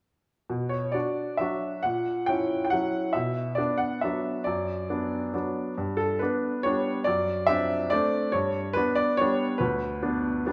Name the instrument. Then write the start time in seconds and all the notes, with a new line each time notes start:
upright piano
0.50 B2
0.69 C#5
0.92 D4 F#4 D5
1.37 F#3 D4 F#4 E5
1.83 A#2 F#5
2.26 C#4 E4 G5
2.65 G5
2.70 F#3 C#4 E4 F#5
3.13 B2 E5
3.55 B3 D4 D5
3.78 F#5
4.01 F#3 B3 D4 E5
4.44 F#2 D5
4.90 B3 D4
5.34 F#3 B3 D4
5.77 G2
5.97 A4
6.19 B3 D4 B4
6.63 G3 B3 D4 C#5
7.04 F#2 D5
7.47 C4 D4 E5
7.90 A3 C4 D4 D5
8.32 G2 C#5
8.73 B3 D4 B4
8.95 D5
9.17 G3 B3 D4 C#5
9.58 D2 B4
10.03 B3 D4
10.46 G3 B3 D4